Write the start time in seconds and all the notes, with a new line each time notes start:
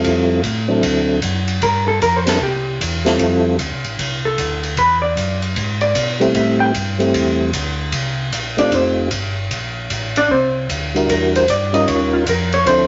Already playing: G3 C4 E4 F4 A4
0.04 F2, kick, ride
0.43 A2, kick, hi-hat pedal, ride
0.68 F#3 C4 D4 E4 A4
0.83 D2, kick, ride
1.22 F#2, kick, hi-hat pedal, ride
1.48 ride
1.62 G2 A#4, kick, ride
1.88 A4
2.02 F2 A#4, kick, hi-hat pedal, ride
2.16 C5
2.26 G3 C4 D4 E4 A4 A#4, snare, ride
2.41 C2 G4, kick
2.81 E2, kick, hi-hat pedal, ride
3.05 G3 C4 E4 F4 A4, snare, ride
3.19 F2, kick, ride
3.59 D2, kick, hi-hat pedal, ride
3.72 C2
3.84 A1, ride
3.99 C2, kick, ride
4.25 A4
4.38 D2, kick, hi-hat pedal, ride
4.63 ride
4.77 E2 B4, kick, ride
5.02 D5
5.17 F#2, kick, hi-hat pedal, ride
5.42 ride
5.56 G#2, kick, ride
5.81 D5, ride
5.95 B2, kick, hi-hat pedal, ride
6.20 G3 A3 C4 E4 G4, ride
6.35 A2 E5, kick, ride
6.60 G5
6.74 G2, kick, hi-hat pedal, ride
6.99 G3 A3 C4 E4 G4, ride
7.14 E2, kick, ride
7.53 D2, kick, hi-hat pedal, ride
7.92 C2, kick, ride
8.32 A#1, kick, hi-hat pedal, ride
8.57 A3 C4 D4 D#4 F4 G4 D5, ride
8.72 F1 C4 C5, kick, ride
9.11 G1, kick, hi-hat pedal, ride
9.51 A#1, kick, ride
9.90 A1, kick, hi-hat pedal, ride
10.16 D4 D5, ride
10.30 C2 C4 C5, kick
10.69 D2, kick, hi-hat pedal, ride
10.94 G3 D4 E4 F#4 A#4, ride
11.09 E2 A#4, kick, ride
11.35 C5, ride
11.48 G2 D5, kick, hi-hat pedal, ride
11.73 G3 C#4 D#4 F4 A#4 D#5, ride
11.87 D#2 C#5, kick, ride
12.13 F4
12.26 F2 A#4, kick, hi-hat pedal, ride
12.52 C#5, ride
12.66 D2 F3 C4 D4 E4 A4 C5, kick, ride